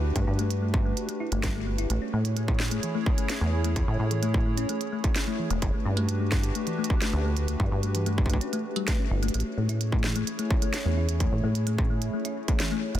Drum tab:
HH |------x-----------x-----x-----------------------x-----x-----------x-----x-----------------x-----|x-----------------x-----x-----------------x-----x-----------------x-----x-----------------x-----|x-----------------x-----x-----------------x-----x-----x-----------x-----x-----------------x-----|x-----------------x-----x-----------------x-----x-----x--------x--------x-----------------x-----|
SD |------------------------------------------------------------------------o-----------------------|------------------------------------o-----------------------------------o-----------------------|------------------------------------------------------------------------o-----------------------|------------------------------------o-----------------------------------o-----------------------|
BD |------o-----------------------------o-----------------------------------o-----------------------|------------------------------o-----------------------------o-----------------------------------|o-----------------------------o-----------------------------------o-----------------------------|o-----------------------------------o-----------------------------o-----------------------------|

HH |x-----------------x-----x-----x-----------x-----x-----x-----------x-----x-----------------x--x--|x--x--------------x-----x-----------------x-----x-----x-----------x-----x-----------------x-----|x-----------------x-----x-----------------x-----------x-----------x-----x-----------------x-----|
SD |------------------------------------------------------------------------o-----------------------|------------------------------------o-----------------------------------o-----------------------|------------------------------------------------------------------------o-----------------------|
BD |------o-----------------------------o---o---o---------------------------o-----------------------|------------------------------o-----------------------------o-----------------------------------|o-----------------------------o-----------------------------------o-----------------------------|